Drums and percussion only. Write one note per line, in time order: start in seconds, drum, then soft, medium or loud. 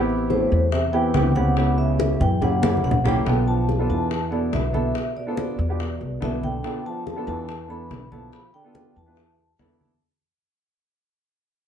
0.10 high conga soft
0.30 high bongo medium
0.30 high conga medium
0.52 high conga soft
0.72 high bongo medium
0.72 high conga soft
0.94 high conga soft
1.14 high bongo medium
1.14 low bongo medium
1.14 high conga medium
1.36 high conga medium
1.57 high bongo medium
1.57 high conga soft
1.78 high bongo soft
1.78 high conga soft
1.99 high bongo medium
1.99 high conga medium
2.21 high conga soft
2.21 low conga medium
2.42 high bongo medium
2.42 high conga soft
2.42 low conga medium
2.63 high bongo medium
2.63 high conga loud
2.77 high conga medium
2.84 low bongo medium
2.91 low conga medium
3.05 low bongo medium
3.05 low conga medium
3.27 high bongo medium
3.27 high conga soft
3.48 high conga soft
3.69 high bongo medium
3.69 high conga medium
3.90 high conga soft
4.11 high bongo medium
4.11 high conga soft
4.33 high conga soft
4.53 high bongo medium
4.53 low bongo medium
4.53 high conga medium
4.74 high conga medium
4.95 high bongo medium
4.95 high conga soft
5.17 high bongo soft
5.17 high conga soft
5.37 high bongo medium
5.37 high conga medium
5.59 high conga soft
5.80 high bongo medium
5.80 high conga soft
6.01 high bongo soft
6.01 high conga soft
6.22 high bongo medium
6.22 low bongo medium
6.22 high conga medium
6.43 high bongo soft
6.43 high conga medium
6.64 high bongo medium
6.64 high conga soft
6.86 high conga soft
7.07 high bongo medium
7.07 high conga medium
7.28 high conga soft
7.49 high bongo medium
7.49 high conga soft
7.70 high conga soft
7.91 high bongo medium
7.91 low bongo medium
7.91 high conga medium
8.12 high conga medium
8.33 high bongo medium
8.33 high conga soft
8.54 high bongo soft
8.54 high conga soft
8.75 high bongo medium
8.75 high conga medium
8.97 high conga soft
9.17 high bongo medium
9.17 high conga soft
9.39 high bongo soft
9.39 high conga soft
9.59 high bongo medium
9.59 low bongo medium
9.59 high conga medium
9.81 high bongo soft
9.81 high conga medium